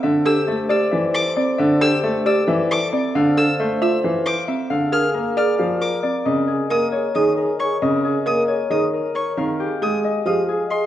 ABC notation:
X:1
M:7/8
L:1/8
Q:1/4=135
K:Aphr
V:1 name="Violin"
z e' z e' z d' z | z e' z e' z d' z | z e' z e' z d' z | z f' z f' z d' z |
[K:Ebmix] z2 e' z e' z d' | z2 e' z e' z d' | z2 e' z e' z c' |]
V:2 name="Harp"
[Ace] G A d e A d | e G A d e A d | f A c e f c e | f _A B d f B d |
[K:Ebmix] e A B d e B d | e A B d e B d | f G A e f A e |]
V:3 name="French horn"
c6- c- | c6 z | c6 z | _A6 z |
[K:Ebmix] A A A A A A A | A A A A A A z | A A A A A A A |]
V:4 name="Marimba"
z A z G z2 C | z A z G z2 C | z A z F z2 C | z B z _A z2 C |
[K:Ebmix] C z B z A z2 | C z B z A z2 | C z A z G z2 |]
V:5 name="Grand piano" clef=bass
D, z A, z E, z2 | D, z A, z E, z2 | D, z A, z E, z2 | D, z B, z F, z2 |
[K:Ebmix] D, z B, z E, z2 | D, z B, z E, z2 | E, z A, z F, z2 |]